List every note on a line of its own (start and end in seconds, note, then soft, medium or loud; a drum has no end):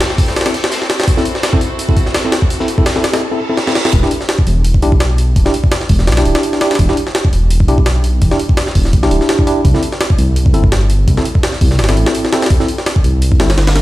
0.00 3.18 C4 medium
0.00 3.18 E4 medium
0.00 1.04 G4 medium
0.00 3.18 A4 medium
0.00 snare loud
0.00 open hi-hat medium
0.00 riser medium
0.00 shaker medium
0.10 snare soft
0.18 kick loud
0.18 open hi-hat medium
0.18 shaker medium
0.28 snare soft
0.36 snare medium
0.36 open hi-hat medium
0.36 shaker medium
0.41 snare medium
0.41 open hi-hat medium
0.46 0.53 C4 medium
0.46 0.53 E4 medium
0.46 0.53 A4 medium
0.46 snare medium
0.46 open hi-hat medium
0.54 open hi-hat medium
0.64 snare loud
0.71 snare loud
0.71 open hi-hat medium
0.71 shaker medium
0.82 snare soft
0.90 snare loud
0.90 open hi-hat medium
0.90 shaker medium
1.00 snare medium
1.00 closed hi-hat soft
1.00 open hi-hat medium
1.03 snare medium
1.03 open hi-hat medium
1.08 3.20 F#4 medium
1.08 kick loud
1.08 open hi-hat medium
1.08 shaker medium
1.17 1.24 C4 medium
1.17 1.24 E4 medium
1.17 1.24 A4 medium
1.17 snare soft
1.25 open hi-hat medium
1.25 shaker medium
1.35 snare soft
1.43 snare loud
1.43 open hi-hat medium
1.43 shaker medium
1.53 1.60 C4 medium
1.53 1.60 E4 medium
1.53 1.60 A4 loud
1.53 kick loud
1.61 open hi-hat medium
1.61 shaker medium
1.79 open hi-hat medium
1.79 shaker loud
1.89 1.96 C4 medium
1.89 1.96 E4 medium
1.89 1.96 A4 medium
1.89 kick medium
1.97 kick loud
1.97 open hi-hat medium
1.97 shaker medium
2.06 snare soft
2.06 closed hi-hat soft
2.14 snare loud
2.14 open hi-hat medium
2.14 shaker medium
2.25 2.32 C4 medium
2.25 2.32 E4 medium
2.25 2.32 A4 loud
2.32 snare loud
2.32 open hi-hat medium
2.32 shaker medium
2.42 kick medium
2.50 open hi-hat medium
2.50 shaker medium
2.60 2.67 C4 medium
2.60 2.67 E4 medium
2.60 2.67 A4 loud
2.60 snare soft
2.68 open hi-hat medium
2.68 shaker medium
2.78 2.85 C4 medium
2.78 2.85 E4 medium
2.78 2.85 A4 loud
2.78 kick medium
2.86 snare loud
2.86 open hi-hat medium
2.86 shaker medium
2.96 3.03 C4 medium
2.96 3.03 E4 medium
2.96 3.03 A4 loud
2.96 snare soft
3.04 snare loud
3.04 open hi-hat medium
3.04 shaker medium
3.13 3.21 C4 medium
3.13 3.21 E4 medium
3.13 3.20 A4 loud
3.13 snare loud
3.13 open hi-hat medium
3.22 reverse cymbal medium
3.31 3.38 C4 medium
3.31 3.39 E4 medium
3.31 3.38 A4 medium
3.49 3.56 C4 medium
3.49 3.56 E4 medium
3.49 3.56 A4 medium
3.57 snare medium
3.67 3.74 C4 medium
3.67 3.74 E4 medium
3.67 3.74 A4 loud
3.67 snare medium
3.75 snare medium
3.85 3.92 C4 medium
3.85 3.92 E4 medium
3.85 3.92 A4 loud
3.85 snare medium
3.93 4.02 E1 loud
3.93 kick loud
3.93 open hi-hat medium
4.03 4.10 D4 medium
4.03 4.10 E4 medium
4.03 4.10 G4 medium
4.03 snare soft
4.11 open hi-hat medium
4.21 snare soft
4.29 snare loud
4.29 open hi-hat medium
4.39 kick loud
4.47 4.81 E1 loud
4.47 open hi-hat medium
4.64 open hi-hat medium
4.74 kick medium
4.82 5.35 B1 loud
4.82 4.91 D4 medium
4.82 4.91 E4 medium
4.82 4.91 G4 loud
4.82 open hi-hat medium
4.92 kick loud
5.00 snare loud
5.00 open hi-hat medium
5.18 open hi-hat medium
5.36 5.45 E1 loud
5.36 kick loud
5.36 open hi-hat medium
5.46 5.53 D4 medium
5.46 5.53 E4 medium
5.46 5.53 G4 loud
5.46 snare medium
5.54 open hi-hat medium
5.64 kick loud
5.72 snare loud
5.72 open hi-hat medium
5.81 snare soft
5.89 6.09 E1 loud
5.89 kick medium
5.89 open hi-hat medium
5.99 snare soft
6.07 6.24 B1 medium
6.07 snare medium
6.07 open hi-hat medium
6.12 snare medium
6.12 open hi-hat medium
6.17 6.59 D4 loud
6.17 6.59 E4 medium
6.17 6.59 G4 loud
6.17 snare loud
6.17 open hi-hat medium
6.25 6.35 D1 medium
6.25 open hi-hat medium
6.35 snare loud
6.43 open hi-hat medium
6.53 snare soft
6.61 6.74 D4 medium
6.61 6.74 E4 medium
6.61 6.74 G4 loud
6.61 snare loud
6.61 open hi-hat medium
6.71 snare medium
6.71 open hi-hat medium
6.75 6.88 E1 loud
6.75 snare medium
6.75 open hi-hat medium
6.79 kick loud
6.79 open hi-hat medium
6.89 6.96 D4 medium
6.89 6.96 E4 medium
6.89 6.96 G4 loud
6.89 snare soft
6.97 open hi-hat medium
7.07 snare soft
7.15 snare loud
7.15 open hi-hat medium
7.25 kick loud
7.33 7.67 E1 loud
7.33 open hi-hat medium
7.50 open hi-hat medium
7.60 kick medium
7.68 8.21 B1 loud
7.68 7.77 D4 loud
7.68 7.77 E4 medium
7.68 7.77 G4 loud
7.68 open hi-hat medium
7.78 kick medium
7.86 snare loud
7.86 open hi-hat medium
8.04 open hi-hat medium
8.22 8.31 E1 loud
8.22 kick loud
8.22 open hi-hat medium
8.31 8.39 D4 medium
8.31 8.39 E4 medium
8.31 8.39 G4 loud
8.31 snare medium
8.39 open hi-hat medium
8.49 kick loud
8.57 snare loud
8.57 open hi-hat medium
8.67 snare soft
8.75 8.95 E1 loud
8.75 kick medium
8.75 open hi-hat medium
8.85 snare soft
8.93 9.10 B1 medium
8.93 kick loud
8.93 open hi-hat medium
9.03 9.45 D4 medium
9.03 9.45 E4 medium
9.03 9.45 G4 loud
9.03 snare medium
9.11 9.20 D1 medium
9.11 open hi-hat medium
9.21 snare soft
9.29 snare loud
9.29 open hi-hat medium
9.39 kick medium
9.47 9.60 D4 medium
9.47 9.60 E4 medium
9.47 9.60 G4 loud
9.47 open hi-hat medium
9.65 9.74 C2 loud
9.65 kick loud
9.65 open hi-hat medium
9.74 9.81 C4 medium
9.74 9.81 E4 medium
9.74 9.81 A4 medium
9.74 snare soft
9.83 open hi-hat medium
9.92 snare soft
10.01 snare loud
10.01 open hi-hat medium
10.10 kick loud
10.18 10.53 C2 loud
10.18 open hi-hat medium
10.36 open hi-hat medium
10.46 kick medium
10.54 11.06 G1 loud
10.54 10.62 C4 medium
10.54 10.62 E4 medium
10.54 10.62 A4 loud
10.54 open hi-hat medium
10.64 kick loud
10.72 snare loud
10.72 open hi-hat medium
10.90 open hi-hat medium
11.08 11.16 C2 loud
11.08 kick loud
11.08 open hi-hat medium
11.17 11.24 C4 medium
11.17 11.24 E4 medium
11.17 11.24 A4 loud
11.17 snare medium
11.25 open hi-hat medium
11.35 kick loud
11.43 snare loud
11.43 open hi-hat medium
11.53 snare soft
11.61 11.81 C2 loud
11.61 kick medium
11.61 open hi-hat medium
11.71 snare soft
11.79 11.95 G1 medium
11.79 snare medium
11.79 open hi-hat medium
11.84 snare medium
11.84 open hi-hat medium
11.89 12.31 C4 loud
11.89 12.31 E4 medium
11.89 12.31 A4 loud
11.89 snare loud
11.89 open hi-hat medium
11.97 12.06 A1 medium
11.97 open hi-hat medium
12.06 snare loud
12.15 open hi-hat medium
12.25 snare medium
12.33 12.46 C4 medium
12.33 12.46 E4 medium
12.33 12.46 A4 loud
12.33 snare loud
12.33 open hi-hat medium
12.42 snare medium
12.42 open hi-hat medium
12.46 snare medium
12.46 open hi-hat medium
12.50 12.59 C2 loud
12.50 kick loud
12.50 open hi-hat medium
12.60 12.67 C4 medium
12.60 12.67 E4 medium
12.60 12.67 A4 medium
12.60 snare soft
12.68 open hi-hat medium
12.78 snare soft
12.86 snare loud
12.86 open hi-hat medium
12.96 kick loud
13.04 13.39 C2 loud
13.04 open hi-hat medium
13.22 open hi-hat medium
13.32 kick loud
13.40 13.82 G1 loud
13.40 13.48 C4 loud
13.40 13.48 E4 medium
13.40 13.48 A4 loud
13.40 snare loud
13.40 open hi-hat medium
13.50 snare loud
13.50 open hi-hat medium
13.58 snare loud
13.58 open hi-hat medium
13.67 snare loud
13.67 open hi-hat medium
13.76 snare loud
13.76 open hi-hat medium